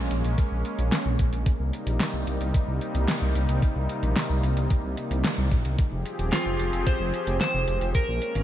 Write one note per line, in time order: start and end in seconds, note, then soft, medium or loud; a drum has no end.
0.00 1.44 G#3 medium
0.00 1.44 A#3 medium
0.00 1.44 C#4 medium
0.11 0.23 A#1 medium
0.11 closed hi-hat medium
0.25 0.36 A#1 medium
0.25 closed hi-hat medium
0.38 kick loud
0.38 closed hi-hat medium
0.52 0.64 A#1 medium
0.65 closed hi-hat medium
0.79 0.91 A#1 medium
0.79 closed hi-hat medium
0.92 snare loud
0.92 closed hi-hat medium
1.06 1.18 A#1 medium
1.19 1.31 A#1 medium
1.19 kick loud
1.19 closed hi-hat medium
1.33 1.45 A#1 medium
1.33 closed hi-hat medium
1.46 5.75 C3 medium
1.46 5.75 G3 medium
1.46 5.75 A#3 medium
1.46 5.75 D#4 medium
1.46 kick loud
1.46 closed hi-hat medium
1.60 1.72 C2 medium
1.73 closed hi-hat medium
1.87 1.99 A#1 medium
1.87 closed hi-hat medium
2.00 snare loud
2.00 closed hi-hat medium
2.14 2.26 C2 medium
2.27 2.39 C2 medium
2.27 closed hi-hat medium
2.41 2.53 C2 medium
2.41 closed hi-hat medium
2.54 kick loud
2.54 closed hi-hat medium
2.68 2.80 C2 medium
2.81 closed hi-hat medium
2.95 3.07 C2 medium
2.95 closed hi-hat medium
3.08 snare loud
3.08 closed hi-hat loud
3.22 3.34 C2 medium
3.35 3.47 C2 medium
3.35 closed hi-hat medium
3.49 3.61 C2 medium
3.49 closed hi-hat medium
3.62 kick loud
3.62 closed hi-hat medium
3.76 3.88 C2 medium
3.89 closed hi-hat medium
4.03 4.15 A#1 medium
4.03 closed hi-hat medium
4.16 snare loud
4.16 closed hi-hat medium
4.30 4.42 C2 medium
4.43 4.55 C2 medium
4.43 closed hi-hat medium
4.57 4.69 C2 medium
4.57 closed hi-hat medium
4.70 kick loud
4.70 closed hi-hat medium
4.84 4.96 C2 medium
4.97 closed hi-hat medium
5.11 5.23 C2 medium
5.11 closed hi-hat medium
5.25 snare loud
5.25 closed hi-hat medium
5.38 5.50 C2 medium
5.52 5.63 A#1 medium
5.52 kick loud
5.52 closed hi-hat medium
5.65 5.77 C2 medium
5.65 closed hi-hat medium
5.79 7.93 F3 medium
5.79 7.93 C4 medium
5.79 7.93 G4 medium
5.79 7.93 G#4 medium
5.79 kick loud
5.79 closed hi-hat medium
5.92 6.04 F1 medium
6.06 closed hi-hat medium
6.19 6.31 D#1 medium
6.19 closed hi-hat medium
6.33 6.88 F4 medium
6.33 snare loud
6.33 closed hi-hat medium
6.46 6.58 F1 medium
6.60 6.72 F1 medium
6.60 closed hi-hat medium
6.73 6.85 F1 medium
6.73 closed hi-hat medium
6.87 7.37 C5 loud
6.87 kick loud
6.87 closed hi-hat medium
7.00 7.12 F1 medium
7.14 closed hi-hat medium
7.27 7.39 F1 medium
7.27 closed hi-hat medium
7.41 7.94 C5 loud
7.41 snare loud
7.41 closed hi-hat medium
7.54 7.66 F1 medium
7.68 7.80 F1 medium
7.68 closed hi-hat medium
7.81 7.93 F1 medium
7.81 closed hi-hat medium
7.95 8.43 G#3 medium
7.95 8.43 A#3 medium
7.95 8.43 C#4 medium
7.95 8.43 A#4 loud
7.95 kick loud
7.95 closed hi-hat medium
8.08 8.20 A#1 medium
8.22 closed hi-hat medium
8.35 8.43 G#1 medium
8.35 closed hi-hat medium